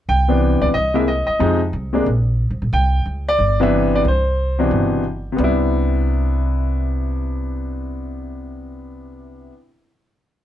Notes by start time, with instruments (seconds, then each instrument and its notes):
0.09 upright bass C2, grand piano G5
0.28 grand piano C3 E3 B3 D4
0.61 upright bass C#2, grand piano D5
0.74 upright bass C2, grand piano D#5
0.94 grand piano C3 G#3 A#3 E4 E5
1.08 grand piano D#5
1.27 grand piano D#5, muted upright bass stroke
1.39 upright bass F2, grand piano C3 F3 G#3 D#4
1.73 upright bass C2
1.93 grand piano C3 G#3 A#3 D4
2.06 upright bass A#1
2.50 upright bass C2
2.62 upright bass A#1
2.73 upright bass C2, grand piano G5
3.06 upright bass C#2
3.29 grand piano D5
3.39 upright bass G1
3.60 grand piano C3 E3 B3 D4 E5
3.95 grand piano D5
4.05 upright bass C2, grand piano C5
4.59 grand piano B2 C3 E3 D4
4.71 upright bass G1
5.32 grand piano C3
5.36 upright bass C2, grand piano B3 D4
5.44 grand piano E4